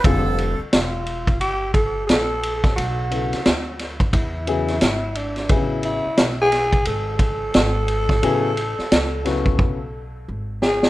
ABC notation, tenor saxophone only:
X:1
M:4/4
L:1/16
Q:"Swing 16ths" 1/4=88
K:A
V:1 name="Tenor saxophone"
z4 =F4 =G2 A2 A4 | F6 z2 E6 D2 | E2 E3 G3 A8- | A12 z2 G2 |]